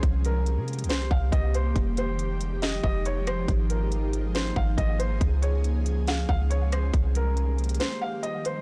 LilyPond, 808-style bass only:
\new Staff \with { instrumentName = "808-style bass" } { \clef bass \time 4/4 \key c \phrygian \tempo 4 = 139 c,4~ c,16 c8~ c32 c,8~ c,32 c,8 c,4 | f,,2~ f,,8 f,,4. | aes,,2~ aes,,8 aes,,8 aes,,4 | des,2~ des,8 des,4. |
c,2 r2 | }